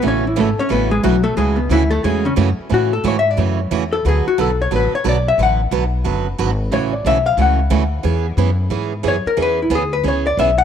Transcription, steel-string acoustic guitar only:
X:1
M:4/4
L:1/16
Q:"Swing" 1/4=180
K:A
V:1 name="Steel-string acoustic guitar"
[C,E,A,CF]2 z2 [C,E,A,CF] z3 [C,E,A,CF]2 z2 [C,E,A,CF] z3 | [C,E,A,CF]2 z2 [C,E,A,CF] z3 [C,E,A,CF]2 z2 [C,E,A,CF] z3 | [C,E,A,CF]2 z2 [C,E,A,CF]2 z2 [C,E,A,CF]2 z2 [C,E,A,CF]2 z2 | [D,F,B,FB]2 z2 [D,F,B,FB]2 z2 [D,F,B,FB]2 z2 [D,F,B,FB]2 z2 |
[D,F,B,FB]2 z2 [D,F,B,FB]2 z2 [D,F,B,FB]2 z2 [D,F,B,FB]2 z2 | [C,E,A,CF]2 z2 [C,E,A,CF]2 z2 [C,E,A,CF]2 z2 [C,E,A,CF]2 z2 | [E,B,CG]2 z2 [E,B,CG]2 z2 [E,B,CG]2 z2 [E,B,CG]2 z2 | [E,B,CG]2 z2 [E,B,CG]2 z2 [E,B,CG]2 z2 [E,B,CG]2 z2 |]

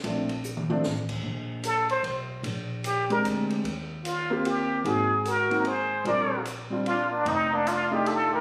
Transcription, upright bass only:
X:1
M:3/4
L:1/8
Q:"Swing" 1/4=150
K:Bb
V:1 name="Upright bass" clef=bass
B,,,4 A,,,2 | B,,,4 _C,,2 | B,,,4 D,,2 | E,,6 |
_A,,,6 | B,,,6 | F,,,4- F,,, z |]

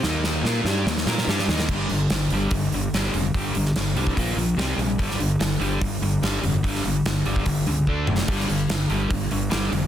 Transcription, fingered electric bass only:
X:1
M:4/4
L:1/8
Q:1/4=146
K:Gm
V:1 name="Fingered electric bass" clef=bass
E,,2 B,, G,, E,, B,, G,, E,, | G,,, G,,, G,,, G,,, G,,, G,,, G,,, F,,, | G,,, G,,, G,,, C,, B,,, B,,, C,, B,,, | G,,, G,,, G,,, G,,, G,,, G,,, G,,, F,,, |
G,,, G,,, G,,, G,,, G,,, ^C,, D,, F,,, | G,,, G,,, G,,, G,,, G,,, G,,, G,,, F,,, |]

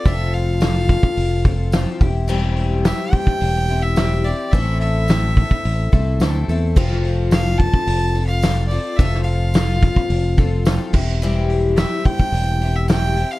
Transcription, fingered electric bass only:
X:1
M:4/4
L:1/8
Q:1/4=108
K:Flyd
V:1 name="Fingered electric bass" clef=bass
F,,,4 F,,,3 E,,,- | E,,,3 z E,,,4 | A,,,4 A,,, C,, D,, E,, | F,,,4 F,,,4 |
F,,,4 F,,,3 E,,,- | E,,,3 z E,,,4 |]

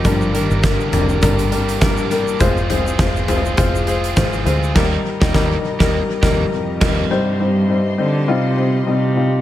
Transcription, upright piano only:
X:1
M:4/4
L:1/16
Q:"Swing 16ths" 1/4=102
K:Cm
V:1 name="Upright piano"
[G,DB] z [G,DB] z [G,DB] z [G,DB] z [G,DB] z [G,DB] z [G,DB] z [G,DB] z | [A,Fc] z [A,Fc] z [A,Fc] z [A,Fc] z [A,Fc] z [A,Fc] z [A,Fc] z [A,Fc] z | [E,G,EB]2 z [G,E] [G,EB]2 z [G,EB]2 z [G,EB]2 z2 [G,EB]2 | [G,CEc] z [G,CEc] z [G,CEc] z [G,CEc] z [G,CEF] z [G,CEc] z [G,CEe] z [G,CEF] z |]
V:2 name="Upright piano" clef=bass
G,,6 z8 z2 | z16 | z16 | C,6 z8 z2 |]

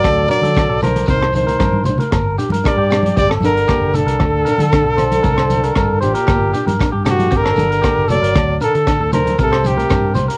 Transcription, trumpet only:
X:1
M:4/4
L:1/8
Q:1/4=116
K:Gm
V:1 name="Trumpet"
d d2 B c c2 z | z2 d2 d B2 A- | A6- A G- | G2 z ^F B3 d- |
d A2 B A G2 z |]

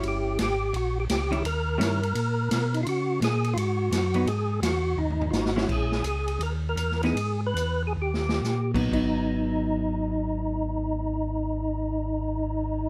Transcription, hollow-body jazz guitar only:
X:1
M:4/4
L:1/8
Q:"Swing" 1/4=170
K:G#m
V:1 name="Hollow-body jazz guitar"
[=G,CE]2 z4 z [D,G,CE] | z2 [D,=G,CE] z4 z | z6 z [F,B,D] | z6 z [G,CE]- |
[G,CE]2 z4 z [E,B,D] | z6 z [F,B,D] | [F,B,D]8- | [F,B,D]8 |]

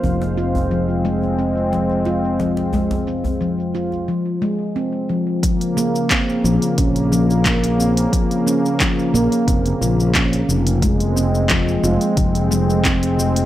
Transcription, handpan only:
X:1
M:4/4
L:1/16
Q:"Swing 16ths" 1/4=89
K:Bbdor
V:1 name="Handpan" clef=bass
F,2 F2 F,2 A, z C2 F,2 F2 F,2 | A, z C2 F,2 F2 F,2 A, z C2 F,2 | F,2 B, z C2 F,2 D2 F,2 B, z C2 | F,2 D2 F,2 B, z C2 F,2 D2 F,2 |
A, z C2 F,2 F2 F,2 A, z C2 F,2 |]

